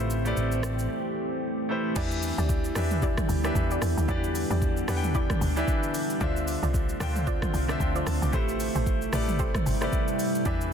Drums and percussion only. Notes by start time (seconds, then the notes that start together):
0.10 shaker
0.26 shaker
0.37 shaker
0.52 shaker
0.63 cross-stick, shaker
0.79 shaker
1.96 kick, crash, shaker
2.11 shaker
2.23 open hi-hat, shaker
2.38 shaker
2.49 kick, shaker
2.64 shaker
2.75 cross-stick, open hi-hat, shaker
2.91 mid tom, shaker
3.02 kick, shaker
3.17 kick, cross-stick, mid tom, shaker
3.29 open hi-hat, shaker
3.44 cross-stick, shaker
3.55 kick, shaker
3.71 shaker
3.82 cross-stick, open hi-hat, shaker
3.98 shaker
4.09 kick, shaker
4.24 shaker
4.35 open hi-hat, shaker
4.51 shaker
4.62 kick, shaker
4.77 shaker
4.88 cross-stick, open hi-hat, shaker
5.03 mid tom, shaker
5.15 kick, shaker
5.30 kick, cross-stick, mid tom, shaker
5.42 open hi-hat, shaker
5.57 shaker
5.68 kick, shaker
5.83 shaker
5.94 open hi-hat, shaker
6.10 shaker
6.21 kick, shaker
6.36 shaker
6.48 open hi-hat, shaker
6.63 shaker
6.74 kick, shaker
6.89 shaker
7.00 cross-stick, open hi-hat, shaker
7.16 mid tom, shaker
7.27 kick, shaker
7.42 kick, cross-stick, mid tom, shaker
7.54 open hi-hat, shaker
7.69 cross-stick, shaker
7.80 kick, shaker
7.96 shaker
8.07 cross-stick, open hi-hat, shaker
8.23 shaker
8.33 kick, shaker
8.49 shaker
8.60 open hi-hat, shaker
8.75 shaker
8.86 kick, shaker
9.02 shaker
9.13 cross-stick, open hi-hat, shaker
9.28 mid tom, shaker
9.39 kick, shaker
9.55 kick, cross-stick, mid tom, shaker
9.66 open hi-hat, shaker
9.82 cross-stick, shaker
9.92 kick, shaker
10.08 shaker
10.19 open hi-hat, shaker
10.35 shaker
10.46 kick, shaker
10.61 shaker